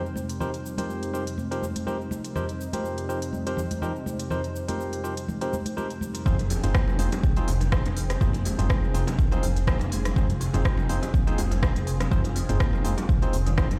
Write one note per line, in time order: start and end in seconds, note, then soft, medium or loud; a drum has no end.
0.00 6.22 F2 medium
0.00 6.22 C3 medium
0.00 6.22 G3 medium
0.00 6.22 C4 medium
0.00 6.22 D#4 medium
0.06 cabasa soft
0.16 high conga medium
0.16 cabasa medium
0.29 closed hi-hat medium
0.29 cabasa soft
0.40 0.50 F3 medium
0.40 0.50 C4 medium
0.40 0.50 D#4 medium
0.40 0.50 G4 medium
0.40 0.50 A#4 medium
0.40 0.50 C5 loud
0.40 low conga medium
0.40 cabasa soft
0.54 closed hi-hat soft
0.54 cabasa soft
0.66 cabasa medium
0.78 1.11 F3 medium
0.78 1.11 C4 medium
0.78 1.11 D#4 medium
0.78 1.11 G4 medium
0.78 1.11 A#4 medium
0.78 1.11 C5 medium
0.78 closed hi-hat medium
0.78 high conga medium
0.78 cabasa soft
0.90 cabasa soft
1.03 closed hi-hat soft
1.03 cabasa soft
1.13 1.23 F3 medium
1.13 1.23 C4 medium
1.13 1.23 D#4 medium
1.13 1.23 G4 medium
1.13 1.23 A#4 medium
1.13 1.23 C5 medium
1.13 cabasa medium
1.27 closed hi-hat medium
1.27 cabasa soft
1.38 high conga medium
1.38 cabasa soft
1.51 1.64 F3 medium
1.51 1.64 C4 medium
1.51 1.64 D#4 medium
1.51 1.64 G4 medium
1.51 1.64 A#4 medium
1.51 1.64 C5 medium
1.51 closed hi-hat soft
1.51 cabasa soft
1.62 high conga medium
1.62 cabasa medium
1.76 closed hi-hat medium
1.76 high conga medium
1.76 cabasa soft
1.87 1.96 F3 medium
1.87 1.96 C4 medium
1.87 1.96 D#4 medium
1.87 1.96 G4 medium
1.87 1.96 A#4 medium
1.87 1.96 C5 loud
1.87 high conga medium
1.87 cabasa soft
2.01 cabasa soft
2.11 high conga medium
2.11 cabasa medium
2.25 closed hi-hat medium
2.25 cabasa soft
2.36 2.45 F3 medium
2.36 2.45 C4 medium
2.36 2.45 D#4 medium
2.36 2.45 G4 medium
2.36 2.45 A#4 medium
2.36 2.45 C5 loud
2.36 low conga loud
2.36 cabasa soft
2.49 closed hi-hat soft
2.49 cabasa soft
2.61 cabasa medium
2.73 3.06 F3 medium
2.73 3.06 C4 medium
2.73 3.06 D#4 medium
2.73 3.06 G4 medium
2.73 3.06 A#4 medium
2.73 3.06 C5 medium
2.73 closed hi-hat medium
2.73 high conga medium
2.73 cabasa soft
2.85 cabasa soft
2.98 closed hi-hat soft
2.98 cabasa soft
3.09 3.18 F3 medium
3.09 3.18 C4 medium
3.09 3.18 D#4 medium
3.09 3.18 G4 medium
3.09 3.18 A#4 medium
3.09 3.18 C5 medium
3.09 cabasa medium
3.22 closed hi-hat medium
3.22 cabasa soft
3.33 high conga medium
3.33 cabasa soft
3.47 3.60 F3 medium
3.47 3.60 C4 medium
3.47 3.60 D#4 medium
3.47 3.60 G4 medium
3.47 3.60 A#4 medium
3.47 3.60 C5 medium
3.47 closed hi-hat soft
3.47 cabasa soft
3.57 low conga medium
3.57 cabasa medium
3.71 closed hi-hat medium
3.71 high conga medium
3.71 cabasa soft
3.82 3.92 F3 medium
3.82 3.92 C4 medium
3.82 3.92 D#4 medium
3.82 3.92 G4 medium
3.82 3.92 A#4 medium
3.82 3.92 C5 loud
3.82 low conga medium
3.82 cabasa soft
3.96 cabasa soft
4.06 high conga medium
4.06 cabasa medium
4.20 closed hi-hat medium
4.20 cabasa soft
4.30 4.40 F3 medium
4.30 4.40 C4 medium
4.30 4.40 D#4 medium
4.30 4.40 G4 medium
4.30 4.40 A#4 medium
4.30 4.40 C5 loud
4.30 low conga loud
4.30 cabasa soft
4.44 closed hi-hat soft
4.44 cabasa soft
4.56 cabasa medium
4.68 5.01 F3 medium
4.68 5.01 C4 medium
4.68 5.01 D#4 medium
4.68 5.01 G4 medium
4.68 5.01 A#4 medium
4.68 5.01 C5 medium
4.68 closed hi-hat medium
4.68 high conga medium
4.68 cabasa soft
4.80 cabasa soft
4.93 closed hi-hat soft
4.93 cabasa soft
5.04 5.13 F3 medium
5.04 5.13 C4 medium
5.04 5.13 D#4 medium
5.04 5.13 G4 medium
5.04 5.13 A#4 medium
5.04 5.13 C5 medium
5.04 cabasa medium
5.17 closed hi-hat medium
5.17 cabasa soft
5.28 high conga medium
5.28 low conga medium
5.28 cabasa soft
5.41 5.55 F3 medium
5.41 5.55 C4 medium
5.41 5.55 D#4 medium
5.41 5.55 G4 medium
5.41 5.54 A#4 medium
5.41 5.54 C5 medium
5.41 closed hi-hat soft
5.41 cabasa soft
5.53 high conga medium
5.53 cabasa medium
5.66 closed hi-hat medium
5.66 high conga medium
5.66 cabasa soft
5.77 5.87 F3 medium
5.77 5.87 C4 medium
5.77 5.87 D#4 medium
5.77 5.87 G4 medium
5.77 5.87 A#4 medium
5.77 5.87 C5 loud
5.77 high conga medium
5.77 cabasa soft
5.90 closed hi-hat soft
5.90 cabasa soft
6.01 high conga loud
6.01 cabasa medium
6.15 closed hi-hat medium
6.15 cabasa soft
6.25 6.59 F1 loud
6.25 13.79 F3 medium
6.25 6.39 F3 medium
6.25 13.79 C4 medium
6.25 6.35 C4 loud
6.25 6.35 D#4 medium
6.25 6.35 F4 medium
6.25 13.79 G#4 medium
6.25 6.35 G#4 medium
6.25 6.35 C5 loud
6.25 10.12 G5 medium
6.25 kick loud
6.25 mid tom medium
6.25 cabasa medium
6.39 closed hi-hat soft
6.39 low bongo medium
6.39 cabasa soft
6.50 6.57 F3 medium
6.50 open hi-hat loud
6.50 high bongo medium
6.50 cabasa loud
6.63 6.72 F1 medium
6.63 6.96 C4 medium
6.63 6.96 D#4 medium
6.63 6.96 F4 medium
6.63 6.96 G#4 medium
6.63 6.96 C5 medium
6.63 closed hi-hat medium
6.63 mid tom medium
6.63 low bongo medium
6.63 cabasa soft
6.74 6.87 A#3 medium
6.74 kick loud
6.74 cross-stick loud
6.74 cabasa medium
6.88 low bongo loud
6.88 cabasa soft
6.99 7.09 F1 loud
6.99 7.11 G#3 medium
6.99 7.09 C4 medium
6.99 7.09 D#4 medium
6.99 7.09 F4 medium
6.99 7.09 G#4 medium
6.99 7.09 C5 medium
6.99 open hi-hat loud
6.99 cabasa medium
7.12 closed hi-hat medium
7.12 high bongo loud
7.12 low bongo loud
7.12 cabasa soft
7.23 7.43 C2 loud
7.23 7.31 C3 medium
7.23 kick loud
7.23 cabasa medium
7.37 7.50 C4 medium
7.37 7.50 D#4 medium
7.37 7.50 F4 medium
7.37 7.50 G#4 medium
7.37 7.50 C5 loud
7.37 closed hi-hat soft
7.37 low bongo medium
7.37 cabasa soft
7.47 7.81 F1 medium
7.47 7.60 C3 loud
7.47 open hi-hat loud
7.47 high bongo medium
7.47 cabasa medium
7.61 closed hi-hat medium
7.61 low bongo medium
7.61 cabasa soft
7.72 7.85 F3 medium
7.72 7.82 C4 loud
7.72 7.82 D#4 medium
7.72 7.82 F4 medium
7.72 7.82 G#4 medium
7.72 7.82 C5 loud
7.72 kick loud
7.72 cross-stick loud
7.72 cabasa medium
7.86 8.17 F1 medium
7.86 closed hi-hat soft
7.86 low bongo loud
7.86 cabasa soft
7.96 8.04 F3 medium
7.96 open hi-hat medium
7.96 cabasa medium
8.10 cross-stick medium
8.10 closed hi-hat medium
8.10 high bongo medium
8.10 low bongo medium
8.10 cabasa soft
8.21 8.54 F1 loud
8.21 8.34 A#3 medium
8.21 8.30 C4 loud
8.21 8.30 D#4 medium
8.21 8.30 F4 medium
8.21 8.30 G#4 medium
8.21 8.30 C5 loud
8.21 kick loud
8.21 mid tom medium
8.21 cabasa medium
8.33 closed hi-hat soft
8.33 low bongo medium
8.33 cabasa soft
8.45 8.57 G#3 medium
8.45 open hi-hat medium
8.45 high bongo medium
8.45 cabasa loud
8.59 8.67 F1 medium
8.59 8.92 C4 medium
8.59 8.92 D#4 medium
8.59 8.92 F4 medium
8.59 8.92 G#4 medium
8.59 8.92 C5 medium
8.59 closed hi-hat medium
8.59 mid tom medium
8.59 low bongo medium
8.59 cabasa soft
8.70 8.77 C3 medium
8.70 kick loud
8.70 cross-stick loud
8.70 cabasa medium
8.84 low bongo medium
8.84 cabasa soft
8.94 9.04 F1 loud
8.94 9.06 C3 loud
8.94 9.04 C4 medium
8.94 9.04 D#4 medium
8.94 9.04 F4 medium
8.94 9.04 G#4 medium
8.94 9.04 C5 medium
8.94 open hi-hat medium
8.94 cabasa medium
9.07 closed hi-hat medium
9.07 high bongo loud
9.07 low bongo loud
9.07 cabasa soft
9.19 9.38 C2 loud
9.19 9.31 F3 medium
9.19 kick loud
9.19 cabasa medium
9.32 9.45 C4 medium
9.32 9.45 D#4 medium
9.32 9.45 F4 medium
9.32 9.45 G#4 medium
9.32 9.45 C5 loud
9.32 closed hi-hat soft
9.32 low bongo loud
9.32 cabasa soft
9.43 9.76 F1 medium
9.43 9.50 F3 medium
9.43 open hi-hat medium
9.43 cabasa loud
9.56 closed hi-hat medium
9.56 low bongo medium
9.56 cabasa soft
9.67 9.80 A#3 medium
9.67 9.77 C4 medium
9.67 9.77 D#4 medium
9.67 9.77 F4 medium
9.67 9.77 G#4 medium
9.67 9.77 C5 loud
9.67 kick loud
9.67 cross-stick loud
9.67 cabasa medium
9.79 10.12 F1 medium
9.79 closed hi-hat soft
9.79 low bongo loud
9.79 cabasa soft
9.92 10.04 G#3 medium
9.92 open hi-hat medium
9.92 high bongo medium
9.92 cabasa loud
10.05 cross-stick medium
10.05 closed hi-hat medium
10.05 low bongo medium
10.05 cabasa soft
10.16 10.49 F1 loud
10.16 10.23 C3 medium
10.16 10.26 C4 medium
10.16 10.26 D#4 medium
10.16 10.26 F4 medium
10.16 13.79 F4 medium
10.16 10.26 G#4 medium
10.16 10.26 C5 loud
10.16 kick loud
10.16 mid tom medium
10.16 cabasa medium
10.30 closed hi-hat soft
10.30 low bongo medium
10.30 cabasa soft
10.40 10.53 C3 loud
10.40 open hi-hat medium
10.40 high bongo medium
10.40 cabasa loud
10.53 10.62 F1 medium
10.53 10.87 C4 medium
10.53 10.87 D#4 medium
10.53 10.87 F4 medium
10.53 10.87 G#4 medium
10.53 10.87 C5 medium
10.53 closed hi-hat medium
10.53 mid tom medium
10.53 low bongo loud
10.53 cabasa soft
10.65 10.78 F3 medium
10.65 kick loud
10.65 cross-stick loud
10.65 cabasa medium
10.77 low bongo loud
10.77 cabasa soft
10.89 11.00 F1 loud
10.89 10.97 F3 medium
10.89 10.99 C4 medium
10.89 10.99 D#4 medium
10.89 10.99 F4 medium
10.89 10.99 G#4 medium
10.89 10.99 C5 medium
10.89 open hi-hat medium
10.89 cabasa loud
11.02 closed hi-hat medium
11.02 high bongo loud
11.02 low bongo medium
11.02 cabasa soft
11.14 11.33 C2 loud
11.14 11.26 A#3 medium
11.14 kick loud
11.14 cabasa medium
11.27 11.40 C4 medium
11.27 11.40 D#4 medium
11.27 11.40 F4 medium
11.27 11.40 G#4 medium
11.27 11.40 C5 loud
11.27 closed hi-hat soft
11.27 low bongo loud
11.27 cabasa soft
11.38 11.71 F1 medium
11.38 11.50 G#3 medium
11.38 open hi-hat medium
11.38 high bongo medium
11.38 cabasa loud
11.51 closed hi-hat medium
11.51 low bongo loud
11.51 cabasa soft
11.62 11.70 C3 medium
11.62 11.72 C4 loud
11.62 11.72 D#4 medium
11.62 11.72 F4 medium
11.62 11.72 G#4 medium
11.62 11.72 C5 loud
11.62 kick loud
11.62 cross-stick loud
11.62 cabasa medium
11.76 12.07 F1 medium
11.76 closed hi-hat soft
11.76 low bongo medium
11.76 cabasa soft
11.87 11.99 C3 loud
11.87 open hi-hat medium
11.87 cabasa loud
12.00 cross-stick medium
12.00 closed hi-hat medium
12.00 high bongo medium
12.00 low bongo loud
12.00 cabasa soft
12.11 12.44 F1 loud
12.11 12.24 F3 medium
12.11 12.21 C4 medium
12.11 12.21 D#4 medium
12.11 12.21 F4 medium
12.11 12.21 G#4 medium
12.11 12.21 C5 loud
12.11 kick loud
12.11 mid tom medium
12.11 cabasa medium
12.24 closed hi-hat soft
12.24 low bongo loud
12.24 cabasa soft
12.36 12.43 F3 medium
12.36 open hi-hat medium
12.36 high bongo medium
12.36 cabasa loud
12.49 12.58 F1 medium
12.49 12.82 C4 medium
12.49 12.82 D#4 medium
12.49 12.82 F4 medium
12.49 12.82 G#4 medium
12.49 12.82 C5 loud
12.49 closed hi-hat medium
12.49 mid tom medium
12.49 low bongo medium
12.49 cabasa soft
12.60 12.73 A#3 medium
12.60 kick loud
12.60 cross-stick loud
12.60 cabasa medium
12.73 low bongo medium
12.73 cabasa soft
12.85 12.95 F1 loud
12.85 12.97 G#3 medium
12.85 12.94 C4 medium
12.85 12.94 D#4 medium
12.85 12.94 F4 medium
12.85 12.94 G#4 medium
12.85 12.94 C5 medium
12.85 open hi-hat medium
12.85 cabasa loud
12.97 closed hi-hat medium
12.97 high bongo loud
12.97 low bongo medium
12.97 cabasa soft
13.09 13.28 C2 loud
13.09 13.16 C3 medium
13.09 kick loud
13.09 cabasa medium
13.22 13.35 C4 medium
13.22 13.35 D#4 medium
13.22 13.35 F4 medium
13.22 13.35 G#4 medium
13.22 13.35 C5 loud
13.22 closed hi-hat soft
13.22 low bongo medium
13.22 cabasa soft
13.33 13.66 F1 loud
13.33 13.45 C3 medium
13.33 open hi-hat medium
13.33 cabasa loud
13.47 13.57 D#3 loud
13.47 closed hi-hat medium
13.47 low bongo medium
13.47 cabasa soft
13.57 13.67 C4 medium
13.57 13.70 D#4 medium
13.57 13.67 D#4 medium
13.57 13.67 F4 medium
13.57 13.67 G#4 medium
13.57 13.67 C5 loud
13.57 kick loud
13.57 cross-stick loud
13.57 cabasa medium
13.71 13.79 F1 medium
13.71 closed hi-hat soft
13.71 low bongo medium
13.71 cabasa soft